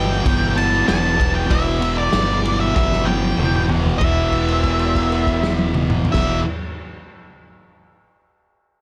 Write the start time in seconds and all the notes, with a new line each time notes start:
Already playing: G1 E2 B2 E3 G5
0.25 G1 E2 B2 E3, kick, ride
0.55 E2 B2 E3 A5, ride
0.73 snare
0.86 E1 E2 B2 E3 A5, snare, ride
1.04 snare
1.18 E2 B2 E3, kick, ride
1.35 G5
1.46 E2 B2 E3
1.50 E1 E5, kick, ride
1.80 E2 B2 E3, ride
1.98 D5
2.11 G1 E2 B2 E3, snare, ride
2.42 E2 B2 E3, ride
2.60 E5
2.74 G1 E2 B2 E3 E5, kick, snare
2.92 snare
3.05 E2 B2 E3 G5, high tom
3.23 high tom
3.37 E1 E2 B2 E3, mid tom
3.55 mid tom
3.68 E2 B2 E3, floor tom
3.85 floor tom
3.98 E1 E2 B2 E5, kick, crash
4.04 E3
4.32 kick, crash
4.48 crash
4.63 kick, crash
4.79 crash
4.95 kick, crash
5.12 crash
5.27 kick, crash
5.43 snare
5.59 high tom
5.74 mid tom
5.90 mid tom
6.05 floor tom
6.12 E1 E2 B2 E5, kick, snare, crash
6.17 E3